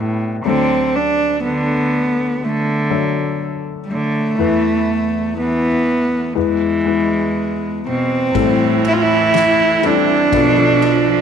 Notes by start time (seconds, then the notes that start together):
Already playing: B1 A2 B2 G3 B3 D4 B4
0.45 D2 D3 F#3 A3 C4 D4 A4
0.96 D4
1.44 D3 B3
2.42 D3 A3
2.90 F#3 A3 D4 A4
3.84 G3
3.90 D3 A3
4.38 E2 E3 A3 B3 E4 B4
5.37 E3 B3
6.35 E2 E3 G#3 B3 E4 B4
6.40 G#3
6.85 G#3 B3 E4 B4
7.87 B2 C4
8.35 A1 A2 E3 G3 C4 E4 A4, kick, ride
8.85 E4, ride
8.93 F4
9.02 E4
9.34 snare, ride
9.83 G3 C4 D4 E4 A4, ride
10.32 B1 B2 F3 B3 D4 A4, kick, ride
10.57 F3 B3 D4 A4
10.82 ride